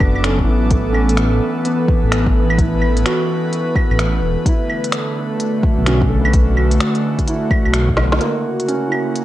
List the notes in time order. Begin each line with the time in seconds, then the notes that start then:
Already playing: F#3 B3 D4 E4 F#4 A4 D6
0.00 F#1, kick, claves
0.15 claves
0.24 C#4, finger snap, closed hi-hat
0.39 kick
0.44 A1 E4
0.71 E3 A3, kick, closed hi-hat
0.92 C#4, claves
1.08 B4, closed hi-hat
1.17 finger snap, closed hi-hat
1.65 B3, closed hi-hat
1.88 kick
2.03 A1
2.12 A1, finger snap, closed hi-hat
2.27 kick
2.50 claves
2.58 E4, kick, closed hi-hat
2.82 claves
2.97 closed hi-hat
3.06 F#4, finger snap, closed hi-hat
3.53 closed hi-hat
3.76 kick, claves
3.91 A1, claves
3.99 finger snap, closed hi-hat
4.22 E1
4.46 D3 E4, kick, closed hi-hat
4.55 A3
4.69 claves
4.84 closed hi-hat
4.92 finger snap, closed hi-hat
5.05 F#4
5.40 closed hi-hat
5.63 kick
5.78 B1
5.86 B1 C#4 F#4, finger snap, closed hi-hat
6.01 kick
6.07 A4
6.20 B4
6.25 claves
6.33 kick, closed hi-hat
6.57 claves
6.71 closed hi-hat
6.80 finger snap, closed hi-hat
6.95 closed hi-hat
7.19 kick, closed hi-hat
7.28 E4, closed hi-hat
7.51 kick, claves
7.65 B1, claves
7.74 finger snap, closed hi-hat
7.89 kick
7.97 B1, snare, claves
8.12 snare
8.20 C#3 A#3, closed hi-hat
8.34 A#3
8.60 closed hi-hat
8.68 C#4 A#4, closed hi-hat
8.88 E4, claves
9.16 closed hi-hat